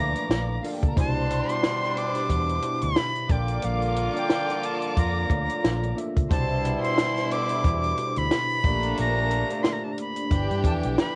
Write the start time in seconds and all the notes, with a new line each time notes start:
Already playing: D2 A#2 D3 E3 F3 A3 A#3 D4 A4 C#5 D5 F5 A#5 D6
0.00 F5
0.15 closed hi-hat
0.29 A#1, snare, closed hi-hat
0.63 A#3 D4 F4 A4 D5 F5, open hi-hat
0.73 G4 G5
0.83 C#2 A4 A5, kick, closed hi-hat
0.89 D4 A#4 A#5
0.96 C2 B2 G3 D4 E4 G4 C5 A5 C6, kick, closed hi-hat
1.30 closed hi-hat
1.49 B2 D4 E4 G4 C5 C6, closed hi-hat
1.64 snare, closed hi-hat
1.83 snare
1.96 B2 D4 E4 G4 B4 D6, closed hi-hat
2.05 C5
2.15 snare, closed hi-hat
2.30 E2, kick, closed hi-hat
2.49 closed hi-hat
2.62 B2 D4 E4 G4 C5, closed hi-hat
2.82 D2 B5, closed hi-hat
2.96 snare, closed hi-hat
3.16 closed hi-hat
3.28 A#1 A#2 D3 F3 A#3 D4 F4 A4 D5 G5 D6, kick, closed hi-hat
3.48 closed hi-hat
3.62 A#1 G3 F5, closed hi-hat
3.82 closed hi-hat
3.97 closed hi-hat
4.14 A#3 D4 F4 A4 D5, closed hi-hat
4.18 G5
4.30 snare, closed hi-hat
4.50 snare, closed hi-hat
4.63 A5, closed hi-hat
4.82 closed hi-hat
4.97 F2 A#5, kick, closed hi-hat
5.28 D2 A3 A#3 D4 F4 C#5, kick, closed hi-hat
5.37 D5
5.50 closed hi-hat
5.63 A#1 D4, snare, closed hi-hat
5.83 closed hi-hat
5.95 A#3 D4 F4 A4 E5, closed hi-hat
6.17 C#2, kick, closed hi-hat
6.29 C2 B2 G3 D4 E4 G4 C5 A5 C6, kick, closed hi-hat
6.65 closed hi-hat
6.82 B2 D4 E4 G4 C5 C6, closed hi-hat
6.98 snare, closed hi-hat
7.17 snare, closed hi-hat
7.30 B2 D4 E4 G4 A4 D6, closed hi-hat
7.49 closed hi-hat
7.64 E2, kick, closed hi-hat
7.83 closed hi-hat
7.96 B2 D4 E4 G4 B4, closed hi-hat
8.06 C5
8.16 D2 B5, closed hi-hat
8.31 snare, closed hi-hat
8.63 A#1 A#2 D3 A3 A#3 D4 F4 G4 D5 A#5, kick, closed hi-hat
8.83 closed hi-hat
8.98 A#1 A#5, closed hi-hat
9.09 D5
9.31 closed hi-hat
9.49 A3 A#3 D4 F4 D5, closed hi-hat
9.63 C6, snare, closed hi-hat
9.73 A#5
9.84 A5
9.93 A#5
9.98 D4 B5, closed hi-hat
10.16 closed hi-hat
10.31 G1 B2 D3 E3 D4 G4 G5, kick, closed hi-hat
10.51 G2, closed hi-hat
10.63 E2 F3 B3 G4 A4 E5 A5, kick, closed hi-hat
10.83 B1, closed hi-hat
10.98 B5, snare, closed hi-hat